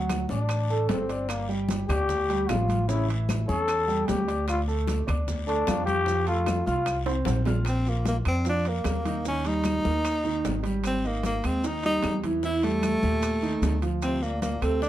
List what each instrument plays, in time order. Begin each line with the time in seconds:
Already playing: upright bass D2, grand piano F#3 F#4 F#5
0.09 high bongo, high conga, high timbale, low timbale, short guiro, claves, maracas
0.29 upright bass A1, trombone D4, grand piano D4 D5 D6, high bongo, high conga, short guiro, maracas
0.49 high bongo, high conga, high timbale, long guiro, claves, maracas
0.69 grand piano A3 A4 A5, high bongo, high conga, maracas
0.89 upright bass G1, trombone C4, high bongo, low bongo, high conga, high timbale, low timbale, short guiro, maracas
1.09 grand piano D4 D5 D6, high bongo, high timbale, short guiro, maracas
1.29 trombone A#3, high bongo, high conga, high timbale, long guiro, claves, maracas
1.49 grand piano G3 G4 G5, high conga, maracas
1.69 high bongo, high conga, high timbale, low timbale, short guiro, maracas
1.88 upright bass D2, grand piano D4 D5 D6, trombone G4, high conga, low conga, high timbale, short guiro, claves, maracas
2.09 high bongo, high conga, low conga, long guiro, maracas
2.29 grand piano G3 G4 G5, high conga, high timbale, maracas
2.49 upright bass A1, grand piano F3 F4 F5, trombone F4, high bongo, low bongo, high conga, high timbale, low timbale, short guiro, claves, maracas
2.69 high conga, high timbale, short guiro, maracas
2.88 grand piano C#3 C#4 C#5, trombone E4, high bongo, high conga, long guiro, maracas
3.08 grand piano E3 E4 E5, high conga, high timbale, maracas
3.29 high bongo, high conga, high timbale, low timbale, short guiro, claves, maracas
3.48 upright bass E2, grand piano C#4 C#5 C#6, trombone A4, high bongo, high conga, short guiro, maracas
3.68 high bongo, high conga, high timbale, long guiro, claves, maracas
3.88 grand piano G3 G4 G5, high bongo, high conga, maracas
4.08 upright bass D2, trombone G4, high bongo, low bongo, high conga, high timbale, low timbale, short guiro, maracas
4.27 grand piano D4 D5 D6, high bongo, high timbale, short guiro, maracas
4.48 trombone F4, high bongo, high conga, high timbale, long guiro, claves, maracas
4.68 grand piano A3 A4 A5, high conga, maracas
4.87 high bongo, high conga, high timbale, low timbale, short guiro, maracas
5.07 upright bass D2, grand piano D4 D5 D6, high conga, low conga, high timbale, short guiro, claves, maracas
5.28 high bongo, high conga, low conga, long guiro, maracas
5.47 grand piano A3 A4 A5, trombone D4, high conga, high timbale, maracas
5.67 upright bass F2, grand piano F3 F4 F5, high bongo, low bongo, high conga, high timbale, low timbale, short guiro, claves, maracas
5.85 trombone G4, high conga, high timbale, short guiro, maracas
6.06 grand piano F3 F4 F5, high bongo, high conga, long guiro, maracas
6.27 grand piano A3 A4 A5, trombone F4, high conga, high timbale, maracas
6.46 high bongo, high conga, high timbale, low timbale, short guiro, claves, maracas
6.66 upright bass C2, grand piano F4 F5 F6, trombone F4, high bongo, high conga, short guiro, maracas
6.86 high bongo, high conga, high timbale, long guiro, claves, maracas
7.06 grand piano C4 C5 C6, high bongo, high conga, high timbale, maracas
7.25 upright bass A#1, high bongo, low bongo, high conga, high timbale, short guiro, maracas
7.45 grand piano F4 F5 F6, high bongo, high conga, low timbale, short guiro, maracas
7.65 tenor saxophone C4, high bongo, high conga, high timbale, long guiro, claves, maracas
7.86 tenor saxophone A#3, grand piano F4 F5, high conga, maracas
8.05 tenor saxophone A#3, high bongo, high conga, high timbale, low timbale, short guiro, maracas
8.25 upright bass F2, tenor saxophone C4, grand piano D4 D5, high conga, high timbale, short guiro, claves, maracas
8.45 grand piano F3 F4, high bongo, high conga, long guiro, maracas
8.49 tenor saxophone D4
8.65 grand piano A#3 A#4, tenor saxophone A#3, high conga, high timbale, maracas
8.84 upright bass D#2, high bongo, low bongo, high conga, high timbale, low timbale, short guiro, claves, maracas
9.05 grand piano D#3 D#4, high conga, high timbale, short guiro, maracas
9.25 grand piano D#3 D#4, tenor saxophone C#4, high bongo, high conga, long guiro, maracas
9.45 grand piano G3 G4, tenor saxophone D#4, high conga, high timbale, maracas
9.64 high bongo, high conga, high timbale, low timbale, short guiro, claves, maracas
9.84 upright bass D#2, grand piano A#3 A#4, high conga, short guiro, maracas
10.05 high bongo, high conga, high timbale, long guiro, claves, maracas
10.24 grand piano D#3 D#4, high bongo, high conga, maracas
10.44 upright bass G#1, high bongo, low bongo, high conga, high timbale, low timbale, short guiro, maracas
10.63 grand piano G3 G4, high bongo, high timbale, short guiro, maracas
10.84 tenor saxophone C4, high bongo, high conga, high timbale, long guiro, claves, maracas
11.04 tenor saxophone A#3, grand piano D#4 D#5, high conga, maracas
11.23 tenor saxophone A#3, high bongo, high conga, high timbale, low timbale, short guiro, maracas
11.44 upright bass D#2, grand piano G#3 G#4, tenor saxophone C4, high timbale, short guiro, claves, maracas
11.64 grand piano D#3 D#4, tenor saxophone D#4, high bongo, high conga, long guiro, maracas
11.83 grand piano G3 G4, tenor saxophone D#4, high conga, high timbale, maracas
12.02 upright bass E2, high bongo, low bongo, high conga, high timbale, low timbale, short guiro, claves, maracas
12.24 grand piano E3 E4, high conga, high timbale, short guiro, maracas
12.43 grand piano E3 E4, tenor saxophone E4, high bongo, high conga, long guiro, maracas
12.63 grand piano G3 G4, tenor saxophone A3, high conga, high timbale, maracas
12.83 high bongo, high conga, high timbale, low timbale, short guiro, claves, maracas
13.03 upright bass D#2, grand piano A#2 G4, high bongo, high conga, short guiro, maracas
13.22 high bongo, high conga, high timbale, long guiro, claves, maracas
13.43 grand piano D#3 D#4, high bongo, high conga, maracas
13.62 upright bass D2, high bongo, low bongo, high conga, high timbale, low timbale, short guiro, maracas
13.82 grand piano F3 F4, high bongo, high timbale, short guiro, maracas
14.02 trombone C3, tenor saxophone C4, high bongo, high conga, high timbale, long guiro, claves, maracas
14.22 trombone A#2, tenor saxophone A#3, grand piano D4 D5, high conga, maracas
14.42 trombone A#2, tenor saxophone A#3, high bongo, high conga, high timbale, low timbale, short guiro, maracas
14.62 upright bass D2, grand piano A3 A4, tenor saxophone C4, high conga, high timbale, short guiro, claves, maracas
14.66 trombone C3
14.82 grand piano D3 D4, trombone D3, tenor saxophone D4, high bongo, high conga, long guiro, maracas